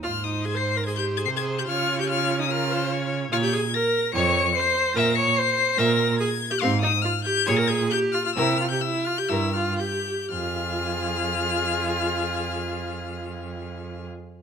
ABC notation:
X:1
M:4/4
L:1/16
Q:1/4=143
K:Fm
V:1 name="Violin"
f'2 e'2 a' c''2 b' a' g'2 a' c'' a'2 g' | f'3 g' f'3 e' f'6 z2 | f' g' a'2 b'4 d''4 c''4 | b'2 d''2 c''4 b'4 a'3 g' |
c'2 e'2 f'2 g'2 a' b' a'2 g'2 f' f' | =e'2 f' g' e'2 f' g' e'2 f'2 g'4 | f'16- | f'16 |]
V:2 name="Violin"
c8 c8 | d4 d4 B2 c2 d4 | d2 z6 d2 z6 | =e2 z6 e2 z6 |
f2 z6 d2 z6 | B2 z6 B2 z6 | A16- | A16 |]
V:3 name="Viola"
F2 E2 A c2 B A G2 A c A2 G | F3 G F3 E F6 z2 | F G A2 B4 d4 c4 | B2 d2 c4 B4 A3 G |
C2 E2 F2 G2 A B A2 G2 F F | =E2 F G E2 F G E2 F2 G4 | F16- | F16 |]
V:4 name="Cello" clef=bass
A,,12 C,4 | D,16 | B,,4 z4 F,,4 z4 | B,,4 z4 B,,4 z4 |
A,,4 z4 B,,4 z4 | C,4 z4 G,,4 z4 | F,,16- | F,,16 |]